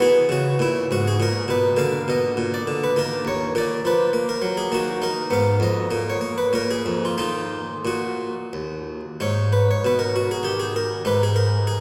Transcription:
0.00 E3 B3 G#4
0.29 C#3 F#4
0.59 A#2 E4
0.91 G#2 F#4
1.08 G#4
1.20 A#2 A#4
1.48 B2 B4
1.77 D3 A#3 F5
2.08 B2 D#5
2.37 A#2
2.54 D5
2.67 D3
2.84 B4
2.96 D#3 A#3 A#4
3.25 D#2 C#5
3.55 A#2 A#3 D5
3.85 F3 B4
4.13 A#3
4.29 A#4
4.42 F#3
4.57 G#4
4.72 D#3 A#3 F#4
5.02 D#4 A#4
5.30 G#2 B3 F5
5.60 F2 D#5
5.91 A#2 A#3
6.10 C#5
6.21 A#3
6.38 B4
6.53 A#2 A#3 A#4
6.71 G#4
6.86 F2
7.05 F4
7.18 D#3 A#3 D#4 F4
7.85 A#2 F#4
8.53 D#2
9.20 G#2 D#4 C#5
9.53 B4
9.71 C#5
9.85 B2 B4
9.99 A#4
10.16 F#4
10.31 G#4
10.43 D#3 G4
10.60 G#4
10.76 A#4
11.05 G#2 D#4 B4
11.23 G#4
11.36 A#4
11.67 G#4

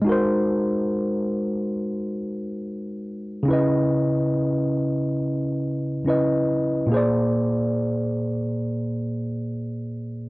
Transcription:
0.02 G#3 D#4
0.07 F#4 A#4
0.12 C5
3.43 C#3 C#4
3.48 E4 B4
3.53 D#5
6.05 C#3 C#4 E4 B4
6.10 D#5
6.87 A#2 A#3
6.92 G#4 C5
6.97 D5

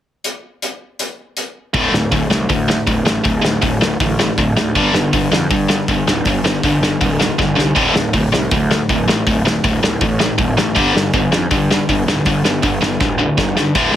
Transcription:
0.24 closed hi-hat
0.62 closed hi-hat
0.99 closed hi-hat
1.37 closed hi-hat
1.74 D1 D2 A2 D3, kick, open hi-hat
1.92 D1 D2 A2, snare
2.12 D1 D2 A2, kick, open hi-hat
2.30 C2 D2 A2, snare
2.49 D2 A2, kick, open hi-hat
2.68 D2 A2, snare
2.87 D1 D2 A2, kick, open hi-hat
3.04 A1 D2 A2, snare
3.24 D1 D2 A2, kick, open hi-hat
3.42 D1 D2 A2, snare
3.62 D1 D2 A2, kick, open hi-hat
3.79 D1 D2 A2, snare
4.00 A1 D2 A2, kick, open hi-hat
4.19 D2 A2, snare
4.38 D1 D2 A2, kick, open hi-hat
4.55 D2 A2, snare
4.75 G1 G2 D3 G3, kick, open hi-hat
4.93 G1 G2 D3, snare
5.13 G1 G2 D3, kick, open hi-hat
5.31 F2 G2 D3, snare
5.50 G2 D3, kick, open hi-hat
5.68 G2 D3, snare
5.88 G1 G2 D3, kick, open hi-hat
6.06 D1 G2 D3, snare
6.25 G1 G2 D3, kick, open hi-hat
6.43 G1 G2 D3, snare
6.63 G1 G2 D3, kick, open hi-hat
6.81 G1 G2 D3, snare
7.01 D1 G2 D3, kick, open hi-hat
7.19 G2 D3, snare
7.39 G1 G2 D3, kick, snare
7.55 C2 G2 D3, snare
7.75 D1 D2 A2 D3, kick, open hi-hat
7.94 D1 D2 A2, snare
8.13 D1 D2 A2, kick, open hi-hat
8.32 C2 D2 A2, snare
8.51 D2 A2, kick, open hi-hat
8.71 D2 A2, snare
8.89 D1 D2 A2, kick, open hi-hat
9.07 A1 D2 A2, snare
9.27 D1 D2 A2, kick, open hi-hat
9.45 D1 D2 A2, snare
9.64 D1 D2 A2, kick, open hi-hat
9.82 D1 D2 A2, snare
10.01 A1 D2 A2, kick, open hi-hat
10.19 D2 A2, snare
10.38 D1 D2 A2, kick, open hi-hat
10.56 A1 D2 A2, snare
10.75 G1 G2 D3 G3, kick, open hi-hat
10.94 G1 G2 D3, snare
11.13 G1 G2 D3, kick, open hi-hat
11.31 F2 G2 D3, snare
11.51 G2 D3, kick, open hi-hat
11.70 G2 D3, snare
11.88 G1 G2 D3, kick, open hi-hat
12.06 D1 G2 D3, snare
12.25 G1 G2 D3, kick, open hi-hat
12.44 G1 G2 D3, snare
12.63 G1 G2 D3, kick, open hi-hat
12.82 G1 G2 D3, snare
13.01 D1 G2 D3, kick, snare
13.19 G2 D3
13.38 G1 G2 D3, kick, snare
13.56 G2 D3, snare
13.75 D1 D2 A2 D3, kick, open hi-hat, splash
13.92 D1

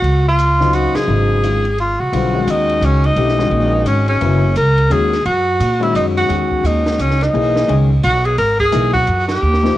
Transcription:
Already playing: F#4
0.02 C#2, ride
0.29 F4
0.39 hi-hat pedal, ride
0.60 C#3 F#3 C4 D#4, snare
0.73 F#4, hi-hat pedal, ride
0.95 G#4, muted upright bass stroke, snare, ride
1.08 G#1 C#3 F#3 C4 D#4
1.43 D#3 G#3 C#4 F4, hi-hat pedal, ride
1.65 ride
1.78 F4, ride
2.00 C2 F#4
2.12 B1 D3 G3 C4 F4, ride
2.34 D#3 G#3 C#4 F#4
2.47 D#2 D#4, hi-hat pedal, ride
2.69 ride
2.81 C#2 C#4, hi-hat pedal, ride
3.04 D#4, ride
3.16 B1 E3 A3 D4 G4, ride
3.29 snare
3.38 D#3 G#3 C#4 F#4, snare
3.50 A#1, ride
3.86 G#1 C#4, hi-hat pedal, ride
4.08 C#4, ride
4.21 F#1 C#3 F#3 B3 E4, ride
4.56 C#2 A#4, hi-hat pedal, ride
4.78 ride
4.90 D#2 D#3 G#3 C#4 F#4 G#4, hi-hat pedal, ride
5.13 snare, ride
5.25 F#2 F#4, ride
5.60 A#2, hi-hat pedal, ride
5.80 D#3 G#3 C#4 E4 F#4, ride
5.95 F#2 D#4, hi-hat pedal, ride
6.17 F#4, ride
6.28 E2 D#3 G#3 C#4 F#4, ride
6.51 kick
6.63 D#2 D#4, hi-hat pedal, ride
6.86 snare, ride
6.99 C#2 C#4, hi-hat pedal, ride
7.10 snare
7.21 D#4, snare, ride
7.33 B1 E3 A#3 D#4 G#4, ride
7.56 snare
7.68 C#2 D#3 G#3 C#4 G#4, ride
8.03 B1 F#4, hi-hat pedal, ride
8.25 G#4, ride
8.38 G#1 A#4, ride
8.59 G#4, kick, ride
8.72 B1 E3 A#3 D#4 G#4, hi-hat pedal, ride
8.94 F#4, kick, ride
9.07 F#2, hi-hat pedal, ride
9.28 G4, snare, ride
9.42 D#2
9.54 snare
9.63 F3 A#3 D#4 G4, snare

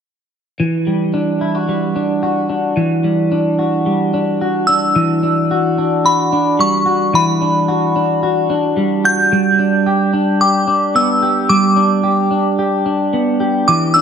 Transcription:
0.60 E3
0.87 G3
1.14 D4
1.41 E4
1.55 F#4
1.69 G3
1.96 D4
2.23 F#4
2.49 D4
2.77 E3
3.04 G3
3.32 D4
3.59 F#4
3.86 G3
4.14 D4
4.41 F#4
4.67 D4 E6
4.96 E3
5.23 D4
5.51 F#4
5.78 D4
6.05 F#4 B5
6.33 D4
6.59 G3 C#6
6.86 F#4
7.14 E3 B5
7.41 D4
7.68 F#4
7.96 D4
8.23 F#4
8.50 D4
8.77 G3
9.04 F#4 G6
9.32 G3
9.59 D4
9.86 G4
10.13 D4
10.41 G4 D6
10.67 D4
10.95 B3 E6
11.22 G4
11.49 G3 D6
11.76 D4
12.04 G4
12.31 D4
12.59 G4
12.86 D4
13.13 B3
13.40 G4
13.68 E3 D6
13.94 D4 E6

